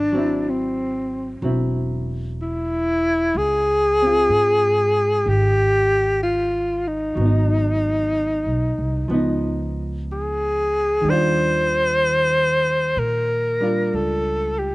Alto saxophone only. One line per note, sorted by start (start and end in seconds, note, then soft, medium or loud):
0.00 0.51 D4 medium
0.50 1.44 C4 medium
2.42 3.39 E4 medium
3.37 5.30 G#4 loud
5.29 6.22 G4 medium
6.23 6.89 F4 medium
6.88 9.75 D#4 medium
10.12 11.11 G#4 medium
11.10 13.01 C5 medium
12.99 13.97 A#4 medium
13.95 14.60 A4 medium
14.59 14.75 G4 medium